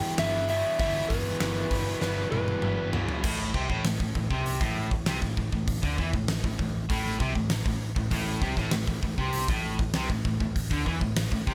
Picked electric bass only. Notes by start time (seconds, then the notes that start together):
0.19 G1
0.79 G1
1.10 G1
1.42 G1
1.71 G1
2.02 G1
2.32 G1
2.63 G1
3.24 A1
3.54 C2
3.70 A1
3.85 A1
4.00 A1
4.15 A1
4.30 C2
4.61 A1
4.91 A1
5.07 C2
5.22 A1
5.37 A1
5.52 A1
5.83 D2
5.98 E2
6.13 A1
6.44 A1
6.59 A1
6.90 A1
7.20 C2
7.36 A1
7.66 A1
7.96 A1
8.11 A1
8.42 C2
8.57 A1
8.72 A1
8.87 A1
9.02 A1
9.18 C2
9.48 A1
9.79 A1
9.95 C2
10.10 A1
10.25 A1
10.40 A1
10.71 D2
10.86 E2
11.01 A1
11.31 A1
11.47 C2